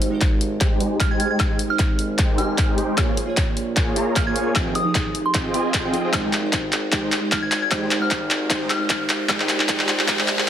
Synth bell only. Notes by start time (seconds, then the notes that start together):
1.00 F6
1.11 G#6
1.20 G#6
1.31 G#6
1.70 F6
2.38 F6
4.16 F6
4.27 G#6
4.75 D#6
5.26 C6
7.32 F6
7.42 G#6
7.52 G#6
7.62 G#6
8.02 F6
8.70 F6